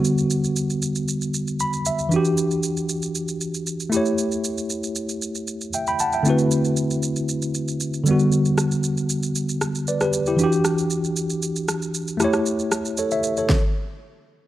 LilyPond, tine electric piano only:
\new Staff \with { instrumentName = "Tine electric piano" } { \time 4/4 \key a \dorian \tempo 4 = 116 << { r2. b''8 e''8 | r1 | r2. <e'' g''>16 <g'' b''>16 <fis'' a''>16 <e'' g''>16~ | <e'' g''>16 r2. r8. |
r2. <b' d''>16 <g' b'>8 <e' g'>16~ | <e' g'>16 r2. r8. | r4 <a' cis''>16 <cis'' e''>8 <a' cis''>8 r4. r16 | } \\ { <d g b fis'>2.~ <d g b fis'>8 r8 | <e d' fis' g'>2.~ <e d' fis' g'>8 <a e' g' cis''>8~ | <a e' g' cis''>2. r4 | <d a c' e' fis' b'>2.~ <d a c' e' fis' b'>8 <d g b fis'>8~ |
<d g b fis'>2.~ <d g b fis'>8 r8 | <e d' fis' g'>2.~ <e d' fis' g'>8 <a e' g' cis''>8~ | <a e' g' cis''>2 r2 | } >> }